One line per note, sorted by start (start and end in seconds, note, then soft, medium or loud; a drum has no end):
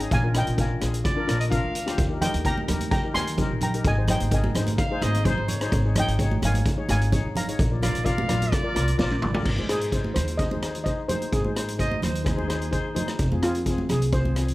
0.00 0.11 C#4 medium
0.00 0.11 D#4 medium
0.00 0.11 G#4 medium
0.00 0.11 G5 medium
0.00 0.11 A#5 medium
0.00 closed hi-hat medium
0.11 0.40 A#1 loud
0.11 0.34 F5 medium
0.11 0.37 G#5 loud
0.11 kick loud
0.11 closed hi-hat medium
0.23 0.30 D4 medium
0.23 0.30 F4 medium
0.23 0.31 A#4 medium
0.34 0.49 D4 medium
0.34 0.49 F4 medium
0.34 0.50 A#4 medium
0.34 0.57 D#5 medium
0.34 0.60 G5 loud
0.34 cross-stick medium
0.34 closed hi-hat medium
0.47 0.75 A#1 medium
0.47 closed hi-hat medium
0.57 0.72 D4 medium
0.57 0.72 F4 medium
0.57 0.72 A#4 medium
0.57 1.03 F5 medium
0.57 1.03 G#5 medium
0.57 kick medium
0.57 closed hi-hat medium
0.80 1.00 A#1 medium
0.80 1.02 D4 medium
0.80 1.02 F4 medium
0.80 1.03 G#4 medium
0.80 cross-stick medium
0.80 closed hi-hat medium
0.94 closed hi-hat medium
1.05 1.38 D5 medium
1.05 kick loud
1.05 cross-stick medium
1.05 closed hi-hat medium
1.16 1.24 D4 medium
1.16 1.24 F4 medium
1.16 1.24 A#4 loud
1.27 1.57 A#1 loud
1.27 1.42 D4 medium
1.27 1.42 F4 medium
1.27 1.43 A#4 loud
1.27 cross-stick medium
1.27 closed hi-hat medium
1.40 1.45 D#5 medium
1.40 closed hi-hat medium
1.50 1.72 D4 medium
1.50 1.72 F4 medium
1.50 1.73 A#4 loud
1.50 2.06 F5 loud
1.50 kick medium
1.50 closed hi-hat medium
1.64 1.92 D2 medium
1.75 closed hi-hat medium
1.86 1.98 D4 medium
1.86 1.98 F4 medium
1.86 1.98 G4 loud
1.86 cross-stick medium
1.86 closed hi-hat medium
1.98 2.27 D#2 loud
1.98 kick loud
1.98 closed hi-hat medium
2.09 2.16 D#4 medium
2.09 2.17 G4 medium
2.09 2.17 A#4 medium
2.21 2.36 D#4 medium
2.21 2.36 G4 medium
2.21 2.36 A#4 medium
2.21 2.33 D#5 medium
2.21 2.32 G5 medium
2.21 cross-stick medium
2.21 closed hi-hat loud
2.21 high conga medium
2.21 low conga medium
2.34 2.62 D#2 medium
2.34 closed hi-hat medium
2.45 2.59 D#4 medium
2.45 2.60 G4 medium
2.45 2.60 A#4 medium
2.45 2.89 G5 medium
2.45 2.90 A#5 loud
2.45 kick medium
2.45 closed hi-hat medium
2.58 high conga medium
2.68 2.88 D#2 medium
2.68 2.90 D#4 medium
2.68 2.90 G4 medium
2.68 2.90 A#4 medium
2.68 cross-stick medium
2.68 closed hi-hat medium
2.68 low conga medium
2.81 closed hi-hat medium
2.81 high conga medium
2.91 3.14 G5 medium
2.91 3.16 A#5 loud
2.91 kick loud
2.91 closed hi-hat medium
3.03 3.10 D#4 medium
3.03 3.11 G4 medium
3.03 3.11 A#4 medium
3.13 3.44 D#2 medium
3.13 3.29 D#4 medium
3.13 3.29 G4 medium
3.13 3.29 A#4 medium
3.13 3.59 G#5 medium
3.13 3.58 C6 loud
3.13 cross-stick medium
3.13 closed hi-hat medium
3.13 high conga medium
3.27 closed hi-hat medium
3.38 3.59 D#4 medium
3.38 3.60 G4 medium
3.38 3.60 A#4 medium
3.38 kick medium
3.38 closed hi-hat medium
3.38 low conga medium
3.51 3.78 A#1 medium
3.61 3.84 G5 medium
3.61 3.86 A#5 medium
3.61 closed hi-hat medium
3.61 low conga medium
3.74 3.85 D#4 medium
3.74 3.86 G4 medium
3.74 3.86 A#4 medium
3.74 closed hi-hat medium
3.85 4.13 G#1 loud
3.85 4.08 D#5 medium
3.85 4.10 G#5 loud
3.85 kick loud
3.85 closed hi-hat medium
3.98 4.04 D#4 medium
3.98 4.04 G#4 medium
3.98 4.05 C5 medium
4.08 4.23 D#4 medium
4.08 4.23 G#4 medium
4.08 4.23 C5 medium
4.08 4.31 D#5 medium
4.08 4.34 G5 loud
4.08 cross-stick medium
4.08 closed hi-hat loud
4.08 high conga medium
4.08 low conga medium
4.20 4.48 G#1 medium
4.20 closed hi-hat medium
4.31 4.46 D#4 medium
4.31 4.46 G#4 medium
4.31 4.46 A#4 medium
4.31 4.76 D#5 medium
4.31 4.77 G#5 medium
4.31 kick medium
4.31 closed hi-hat medium
4.44 high conga medium
4.55 4.74 G#1 medium
4.55 4.77 D#4 medium
4.55 4.77 G#4 medium
4.55 4.77 C5 medium
4.55 cross-stick medium
4.55 closed hi-hat medium
4.55 low conga medium
4.67 closed hi-hat medium
4.67 high conga medium
4.78 5.04 F5 loud
4.78 kick loud
4.78 cross-stick medium
4.78 closed hi-hat medium
4.91 4.98 D#4 medium
4.91 4.98 G#4 medium
4.91 4.98 C5 loud
5.02 5.31 G#1 loud
5.02 5.17 D#4 medium
5.02 5.17 G#4 medium
5.02 5.17 C5 medium
5.02 5.27 D#5 loud
5.02 cross-stick medium
5.02 closed hi-hat medium
5.02 high conga medium
5.14 closed hi-hat medium
5.25 5.46 D#4 loud
5.25 5.47 G#4 medium
5.25 5.50 C5 medium
5.25 5.47 C5 loud
5.25 kick medium
5.25 closed hi-hat medium
5.25 low conga medium
5.37 5.65 G#1 medium
5.48 5.84 C#5 medium
5.48 closed hi-hat loud
5.48 low conga medium
5.61 5.72 D#4 medium
5.61 5.72 G#4 medium
5.61 5.72 C5 loud
5.61 cross-stick medium
5.61 closed hi-hat medium
5.72 6.01 G#1 loud
5.72 kick loud
5.72 closed hi-hat medium
5.85 5.92 D#4 medium
5.85 5.91 G#4 medium
5.85 5.92 C#5 medium
5.96 6.10 D#4 medium
5.96 6.11 G#4 medium
5.96 6.11 C#5 medium
5.96 6.40 D#5 medium
5.96 6.46 G5 loud
5.96 cross-stick loud
5.96 closed hi-hat loud
5.96 high conga medium
5.96 low conga medium
6.08 6.35 G#1 medium
6.08 closed hi-hat medium
6.19 6.34 D#4 medium
6.19 6.34 G#4 medium
6.19 6.34 C#5 medium
6.19 kick loud
6.19 closed hi-hat medium
6.31 high conga medium
6.42 6.61 G#1 medium
6.42 6.63 D#4 medium
6.42 6.63 G#4 medium
6.42 6.64 C#5 medium
6.42 6.87 F5 medium
6.42 6.89 G#5 loud
6.42 cross-stick medium
6.42 closed hi-hat medium
6.42 low conga medium
6.54 closed hi-hat medium
6.54 high conga medium
6.66 kick loud
6.66 closed hi-hat medium
6.77 6.84 D#4 medium
6.77 6.84 G#4 medium
6.77 6.85 C#5 medium
6.88 7.17 G#1 loud
6.88 7.03 D#4 medium
6.88 7.03 G#4 medium
6.88 7.03 C#5 medium
6.88 7.33 F5 medium
6.88 7.38 G#5 loud
6.88 cross-stick medium
6.88 closed hi-hat medium
6.88 high conga medium
7.01 closed hi-hat medium
7.12 7.33 D#4 medium
7.12 7.33 G#4 medium
7.12 7.33 C#5 loud
7.12 kick medium
7.12 closed hi-hat medium
7.12 low conga medium
7.25 7.52 G#1 medium
7.35 9.19 F5 medium
7.35 9.19 A#5 medium
7.35 closed hi-hat loud
7.35 low conga medium
7.48 7.59 D#4 medium
7.48 7.59 G#4 medium
7.48 7.60 C#5 medium
7.48 closed hi-hat medium
7.59 7.87 A#1 loud
7.59 kick loud
7.59 closed hi-hat medium
7.71 7.78 F4 medium
7.71 7.78 A#4 medium
7.71 7.78 D5 medium
7.81 7.96 F4 medium
7.81 7.96 A#4 medium
7.81 8.07 D5 loud
7.81 7.97 F5 medium
7.81 cross-stick medium
7.81 closed hi-hat medium
7.81 low conga medium
7.95 8.23 A#1 medium
7.95 closed hi-hat medium
8.04 8.19 F4 medium
8.04 8.19 A#4 medium
8.04 8.20 D5 loud
8.04 8.54 F5 loud
8.04 kick medium
8.04 closed hi-hat medium
8.18 high conga medium
8.29 8.48 A#1 medium
8.29 8.50 F4 medium
8.29 8.50 A#4 medium
8.29 8.50 D5 medium
8.29 cross-stick medium
8.29 closed hi-hat medium
8.29 low conga medium
8.42 closed hi-hat medium
8.42 high conga medium
8.52 8.98 D5 loud
8.52 kick loud
8.52 cross-stick medium
8.52 closed hi-hat medium
8.63 8.71 F4 medium
8.63 8.71 A#4 medium
8.63 8.71 D5 loud
8.75 8.97 C2 medium
8.75 8.89 F4 medium
8.75 8.90 A#4 medium
8.75 8.90 D5 medium
8.75 cross-stick medium
8.75 closed hi-hat medium
8.75 high conga medium
8.88 closed hi-hat medium
8.98 9.20 F4 loud
8.98 9.20 A#4 medium
8.98 9.42 D5 medium
8.98 9.20 D5 loud
8.98 kick medium
8.98 snare medium
8.98 low conga medium
9.11 high tom medium
9.22 9.44 G#1 medium
9.22 mid tom loud
9.22 low conga medium
9.34 9.46 F4 medium
9.34 9.45 A#4 medium
9.34 9.46 D5 loud
9.34 floor tom loud
9.34 high conga medium
9.45 9.55 G#1 medium
9.45 kick loud
9.45 crash loud
9.58 10.05 G#2 medium
9.58 9.65 D#4 medium
9.58 9.65 G#4 medium
9.58 9.65 C5 medium
9.58 high conga medium
9.69 9.83 D#4 medium
9.69 9.84 G#4 medium
9.69 10.17 G#4 medium
9.69 9.84 C5 medium
9.69 cross-stick medium
9.69 closed hi-hat medium
9.81 closed hi-hat medium
9.92 10.21 D#4 medium
9.92 10.21 G#4 medium
9.92 10.21 C5 medium
9.92 kick medium
9.92 closed hi-hat medium
10.04 high conga medium
10.14 10.91 D#2 medium
10.14 10.39 C5 medium
10.14 cross-stick medium
10.14 closed hi-hat medium
10.14 low conga medium
10.28 closed hi-hat medium
10.37 10.46 D#4 medium
10.37 10.47 G#4 medium
10.37 10.47 C5 medium
10.37 10.83 D#5 loud
10.37 kick loud
10.37 closed hi-hat medium
10.51 10.58 D#4 medium
10.51 10.58 G#4 medium
10.51 10.58 C5 medium
10.51 high conga medium
10.62 10.77 D#4 medium
10.62 10.77 G#4 medium
10.62 10.77 C5 medium
10.62 cross-stick medium
10.62 closed hi-hat medium
10.75 closed hi-hat medium
10.84 11.00 D#4 medium
10.84 11.00 G#4 medium
10.84 11.01 C5 medium
10.84 11.09 D#5 medium
10.84 kick medium
10.84 closed hi-hat medium
11.08 11.30 D#4 medium
11.08 11.30 G#4 medium
11.08 11.33 C5 medium
11.08 11.30 C5 medium
11.08 closed hi-hat medium
11.08 high conga medium
11.08 low conga medium
11.22 closed hi-hat medium
11.32 11.43 G#1 medium
11.32 11.99 G#4 medium
11.32 kick loud
11.32 closed hi-hat medium
11.44 11.91 G#2 medium
11.44 11.51 D#4 medium
11.44 11.52 G#4 medium
11.44 11.52 C5 medium
11.44 high conga medium
11.55 11.70 D#4 medium
11.55 11.70 G#4 medium
11.55 11.71 C5 medium
11.55 cross-stick medium
11.55 closed hi-hat medium
11.68 closed hi-hat medium
11.78 12.07 D#4 medium
11.78 12.07 G#4 medium
11.78 12.07 C5 medium
11.78 12.01 D#5 loud
11.78 kick medium
11.78 closed hi-hat medium
11.91 high conga medium
12.02 12.78 D#2 medium
12.02 12.25 C5 medium
12.02 cross-stick medium
12.02 closed hi-hat medium
12.02 low conga medium
12.15 closed hi-hat medium
12.24 12.32 D#4 medium
12.24 12.33 G#4 medium
12.24 13.16 G#4 medium
12.24 12.33 C5 medium
12.24 kick loud
12.24 cross-stick medium
12.24 closed hi-hat medium
12.37 12.44 D#4 medium
12.37 12.44 G#4 medium
12.37 12.44 C5 medium
12.37 high conga medium
12.48 12.63 D#4 medium
12.48 12.63 G#4 medium
12.48 12.63 C5 medium
12.48 cross-stick medium
12.48 closed hi-hat medium
12.62 closed hi-hat medium
12.71 12.87 D#4 medium
12.71 12.87 G#4 medium
12.71 12.87 C5 loud
12.71 kick medium
12.71 closed hi-hat medium
12.95 13.17 D#4 medium
12.95 13.17 G#4 medium
12.95 13.17 C5 medium
12.95 closed hi-hat medium
12.95 high conga medium
12.95 low conga medium
13.08 cross-stick medium
13.08 closed hi-hat medium
13.19 13.29 F1 medium
13.19 kick loud
13.19 closed hi-hat medium
13.32 13.78 F2 medium
13.32 13.39 C4 medium
13.32 13.39 F4 medium
13.32 13.39 G#4 medium
13.32 high conga medium
13.43 13.57 C4 medium
13.43 13.57 F4 medium
13.43 13.91 F4 medium
13.43 13.58 G#4 medium
13.43 cross-stick medium
13.43 closed hi-hat medium
13.55 closed hi-hat medium
13.66 13.95 C4 medium
13.66 13.95 F4 medium
13.66 13.95 G#4 medium
13.66 kick medium
13.66 closed hi-hat medium
13.78 high conga medium
13.89 14.54 C2 medium
13.89 14.14 G#4 medium
13.89 cross-stick medium
13.89 closed hi-hat medium
13.89 low conga medium
14.02 closed hi-hat medium
14.12 14.20 C4 medium
14.12 14.20 F4 medium
14.12 14.21 G#4 medium
14.12 14.54 C5 medium
14.12 kick loud
14.12 closed hi-hat medium
14.24 14.31 C4 medium
14.24 14.32 F4 medium
14.24 14.32 G#4 medium
14.24 high conga medium
14.36 14.51 C4 medium
14.36 14.51 F4 medium
14.36 14.51 G#4 medium
14.36 cross-stick medium
14.36 closed hi-hat medium
14.48 closed hi-hat medium